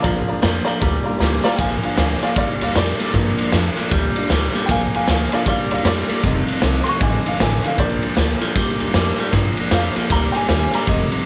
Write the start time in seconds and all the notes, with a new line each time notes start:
Already playing: F4
0.03 A#1 A#2 F3 A#3 D4 F4 D5 F5 A#5, kick, open hi-hat
0.28 A#3 D4 F4 D5 F5 A#5, muted upright bass stroke
0.42 F2 A#2 F3 A#3 D4 F4 D5 F5 A#5, snare, open hi-hat
0.65 A#2 F3 F4 D5 F5 A#5, muted upright bass stroke
0.70 A#3 D4
0.81 D2 A#2 F3 G3 A#3 D4 D5 F5 A#5, kick, open hi-hat
0.85 F4
1.04 D4 F4 D5 F5 A#5, muted upright bass stroke
1.09 A#3
1.18 D2 A#2 F3 G3 A#3 D4 F4 D5 F5 A#5, snare
1.44 A#2 G3 A#3 D4 F4 D5 F5 A#5, muted upright bass stroke, snare
1.56 A#1 A#2 F3 A#3 D4 F5 G5, kick, ride
1.60 F3 F4 G#5
1.82 F3 A#3 D4 F4 F5 G#5, muted upright bass stroke, ride
1.98 D2 A#2 F3 A#3 D4 F4 F5 G#5, snare, ride
2.21 A#2 F3 A#3 D4 F4 D5 F5, muted upright bass stroke, ride
2.36 G1 A#2 F3 G3 A#3 D4 F4 D5 F5, kick, ride
2.60 D2 A#3 D4 F4 D5 F5, ride
2.75 F2 A#2 F3 G3 A#3 D4 F4 A#4 D5, snare, ride
2.98 A#2 G3 A#3 D4 F4, muted upright bass stroke, ride
3.13 G2 A#2 F3 A#3 D4 F4, kick, ride
3.38 A#3 D4 F4, muted upright bass stroke, ride
3.52 F2 A#2 F3 A#3 D4 F4, snare, ride
3.77 A#2 F3 A#3 D4 F4, muted upright bass stroke, ride
3.90 D2 A#2 F3 G3 A#3 D4 F4, kick, ride
4.15 F3 A#3 D4 F4, muted upright bass stroke, ride
4.30 D2 A#2 F3 G3 A#3 D4 F4, snare, ride
4.55 A#2 G3 A#3 D4 F4, muted upright bass stroke, ride
4.66 A#1 A#2 F3 G5, kick, ride
4.70 F3 A#3 D4 F4 F5 G#5
4.94 A#3 D4 F4 F5 G#5, muted upright bass stroke, ride
5.07 D2 A#2 F3 A#3 D4 F4 F5 G#5, snare, ride
5.31 A#2 F3 A#3 D4 F4 D5 F5, muted upright bass stroke, ride
5.46 G1 A#2 F3 G3 A#3 D4 F4 D5 F5, kick, ride
5.70 D2 A#3 D4 F4 D5 F5, ride
5.84 F2 A#2 F3 G3 A#3 D4 F4 D5, snare, ride
6.08 A#2 G3 A#3 D4 F4, muted upright bass stroke, ride
6.22 F1 F2 C3 D#3 G3 A3 D#4 F4, kick, ride
6.47 D#3 A3 D#4 F4, muted upright bass stroke, ride
6.62 C2 F2 C3 D#3 A3 D#4 F4, snare, ride
6.84 F2 C3 D#3 A3 D#4 F4 C6, muted upright bass stroke, ride
6.88 C#6
7.00 A1 F2 D3 D#3 G3 A3 D#4 F4 G#5, kick, ride
7.25 D#3 A3 D#4 F4 F5, muted upright bass stroke, ride
7.40 A1 F2 C3 D3 D#3 A3 D#4 F4 G#5, snare, ride
7.64 F2 D3 D#3 A3 D#4 F4 F5, muted upright bass stroke, ride
7.78 A#1 A#2 F3 A#3 D4 F4 D5, kick, ride
8.03 A#3 D4 F4, muted upright bass stroke, ride
8.17 D2 A#2 F3 A#3 D4 F4, snare, ride
8.40 A#2 F3 A#3 D4 F4, muted upright bass stroke, ride
8.55 G1 A#2 F3 G3 A#3 D4 F4, kick, ride
8.80 D2 A#3 D4 F4, ride
8.94 F2 A#2 F3 G3 A#3 D4 F4, snare, ride
9.18 A#2 G3 A#3 D4 F4, muted upright bass stroke, ride
9.32 G2 A#2 F3 A#3 D4 F4, kick, ride
9.56 A#3 D4 F4, muted upright bass stroke, ride
9.70 F2 A#2 F3 A#3 D4 F4 F5, snare, ride
9.95 A#2 F3 A#3 D4 F4, muted upright bass stroke, ride
10.10 D2 A#2 F3 G3 A#3 D4 F4 A#5, kick, ride
10.32 D4 F4 G5, muted upright bass stroke, ride
10.36 A#3 G#5
10.49 D#2 A#2 F3 G3 A#3 D4 F4, snare, ride
10.73 A#2 G3 A#3 D4 F4 A#5, muted upright bass stroke, ride
10.86 F1 F2 C3 D#3 G3 A3 D#4 F4 D#5, kick, ride
11.11 D#3 A3 D#4 F4, muted upright bass stroke, ride